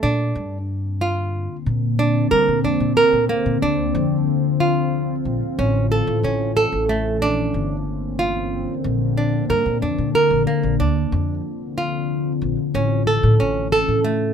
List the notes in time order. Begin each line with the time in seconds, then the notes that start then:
0.02 A#2 D3 A#3 C4 D4
0.35 G2
1.01 F4
1.66 A#2
1.99 D4
2.31 G3 A#4
2.48 A#2
2.64 F2 D4
2.80 A#2
2.97 A#4
3.13 A#2
3.29 A#3
3.46 A#2
3.62 D2 D4 F4
3.95 F2
4.60 F4
5.25 A#1
5.58 A1 E3 A3 C#4
5.92 A4
6.07 A2
6.23 A1 C#4
6.57 A4
6.72 A1
6.89 A3
7.22 A#1 D3 A#3 C4 D4
7.54 G1
8.19 F4
8.84 A#1
9.03 D4
9.18 D4
9.50 G2 A#4
9.66 A#2
9.82 F2 D4
9.98 A#2
10.15 A#4
10.30 A#1
10.47 A#3
10.63 A#1
10.80 D2 D3 C4 D4 F4
11.12 F2
11.78 F4
12.42 A#1
12.74 A1 E3 A3 C#4
13.07 A4
13.23 A2
13.40 A1 C#4
13.72 A4
13.88 A2
14.04 A3